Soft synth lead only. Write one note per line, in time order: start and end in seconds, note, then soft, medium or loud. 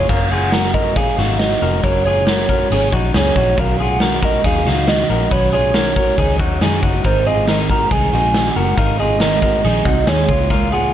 0.09 0.32 F5 loud
0.31 0.75 F#5 loud
0.74 0.98 D#5 medium
0.96 1.41 F5 loud
1.39 1.85 D#5 medium
1.83 2.05 C#5 medium
2.05 2.88 C#5 medium
3.16 3.62 C#5 medium
3.60 3.84 F5 loud
3.82 4.26 F#5 loud
4.25 4.45 D#5 loud
4.46 4.90 F5 loud
4.89 5.34 D#5 medium
5.32 5.53 C#5 medium
5.54 6.36 C#5 medium
7.05 7.28 C5 medium
7.27 7.48 D#5 medium
7.49 7.59 D#5 medium
7.70 7.93 A#5 medium
7.92 8.13 G#5 loud
8.13 8.58 G#5 loud
8.56 8.79 F#5 medium
8.78 9.01 F5 medium
9.00 10.10 D#5 loud
10.08 10.51 C#5 medium
10.51 10.71 F5 loud
10.73 10.93 F#5 medium